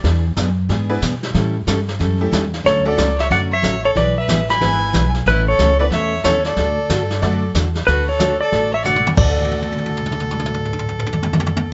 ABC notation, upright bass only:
X:1
M:4/4
L:1/8
Q:"Swing" 1/4=184
K:D
V:1 name="Upright bass" clef=bass
E,,2 F,,2 ^G,,2 B,,2 | A,,2 G,,2 F,,2 E,,2 | D,,2 C,,2 F,,2 A,,,2 | B,,,2 A,,,2 ^G,,,2 B,,,2 |
A,,,2 C,,2 E,,2 _E,,2 | D,,2 G,,2 F,,2 E,,2 | D,,4 A,,,4 | D,,8- |
D,,8 |]